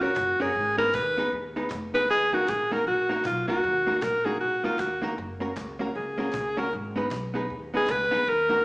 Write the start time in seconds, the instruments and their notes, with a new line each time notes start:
Already playing: upright bass C#2
0.01 hollow-body jazz guitar C#4 F#4 A#4 C#5, alto saxophone F#4
0.16 upright bass F#1, cajon bass, cajon slap, clap
0.40 upright bass F#1, hollow-body jazz guitar C#4 F#4 A#4 C#5, alto saxophone G#4
0.55 upright bass G#1
0.77 hollow-body jazz guitar B3 D#4 G#4 B4, alto saxophone A#4
0.94 upright bass D#2, alto saxophone B4, cajon bass, cajon slap, clap
1.17 hollow-body jazz guitar B3 D#4 G#4 B4
1.32 upright bass D#2
1.56 hollow-body jazz guitar B3 D#4 G#4 B4
1.70 upright bass F1, cajon bass, cajon slap, clap
1.94 upright bass C#2, hollow-body jazz guitar B3 D#4 G#4 B4, alto saxophone B4
2.09 upright bass D#2, alto saxophone G#4
2.33 hollow-body jazz guitar A#3 D#4 F#4 A#4, alto saxophone F#4
2.48 upright bass A#1, alto saxophone G#4, cajon bass, cajon slap, clap
2.71 hollow-body jazz guitar A#3 D#4 F#4 A#4, alto saxophone A#4
2.87 upright bass A#1, alto saxophone F#4
3.09 hollow-body jazz guitar A#3 D#4 F#4 A#4
3.25 upright bass B1, alto saxophone F4, cajon bass, cajon slap, clap
3.47 upright bass C#2, hollow-body jazz guitar A#3 D#4 F#4 A#4, alto saxophone F#4
3.64 upright bass D#2
3.87 hollow-body jazz guitar A#3 D#4 F#4 A#4
4.02 upright bass A#1, alto saxophone A#4, cajon bass, cajon slap, clap
4.25 hollow-body jazz guitar A#3 D#4 F#4 A#4, alto saxophone G#4
4.40 upright bass A#1, alto saxophone F#4
4.64 hollow-body jazz guitar A#3 D#4 F#4 A#4, alto saxophone F4
4.79 upright bass D#2, alto saxophone F#4, cajon bass, cajon slap, clap
5.02 upright bass C#2, hollow-body jazz guitar A#3 D#4 F#4 A#4
5.18 upright bass F#1
5.40 hollow-body jazz guitar A#3 C#4 F#4 A#4
5.57 upright bass C#2, cajon bass, cajon slap, clap
5.79 hollow-body jazz guitar A#3 C#4 F#4 A#4
5.95 upright bass C#2, alto saxophone G#4
6.18 hollow-body jazz guitar A#3 C#4 F#4 A#4
6.33 upright bass C#2, cajon bass, cajon slap, clap
6.57 hollow-body jazz guitar A#3 C#4 F#4 A#4, alto saxophone A#4
6.73 upright bass G#1
6.96 hollow-body jazz guitar B3 D#4 G#4 B4
7.11 upright bass B1, cajon bass, cajon slap, clap
7.34 hollow-body jazz guitar B3 D#4 G#4 B4
7.50 upright bass D#2
7.74 hollow-body jazz guitar B3 D#4 G#4 B4, alto saxophone G#4
7.87 upright bass C#2, cajon bass, cajon slap, clap
7.91 alto saxophone B4
8.11 upright bass C#2, hollow-body jazz guitar B3 D#4 G#4 B4
8.27 upright bass D#2, alto saxophone A#4
8.49 hollow-body jazz guitar A#3 D#4 F#4 A#4